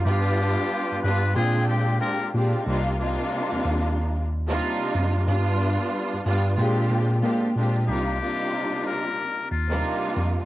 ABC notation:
X:1
M:4/4
L:1/16
Q:"Swing 16ths" 1/4=92
K:Cm
V:1 name="Muted trumpet"
G6 =B2 A2 G2 _B2 z2 | z16 | z16 | G6 B4 F2 z4 |]
V:2 name="String section"
[G,=B,DF]6 [G,B,DF]2 [_B,,A,CDFg]4 [B,,A,CDFG]2 [B,,A,CDFG]2 | [C,G,B,DEF]2 [C,G,B,DEF]6- [C,G,B,DEF] z2 [C,G,B,DEF]4- [C,G,B,DEF] | [G,=B,DF]6 [G,B,DF]2 [_B,,A,CDFG]4 [B,,A,CDFG]2 [B,,A,CDFG]2 | [C,G,B,DEF]2 [C,G,B,DEF]6- [C,G,B,DEF] z2 [C,G,B,DEF]4- [C,G,B,DEF] |]
V:3 name="Tine electric piano" clef=bass
G,,3 z2 G,, G,,2 B,,4 z2 B,, z | C,,3 z2 E,, E,,6 z2 ^F,,2 | G,,3 z2 G,, G,,2 B,,2 B,,2 B,2 B,,2 | C,,2 z8 E,,2 z2 F,, z |]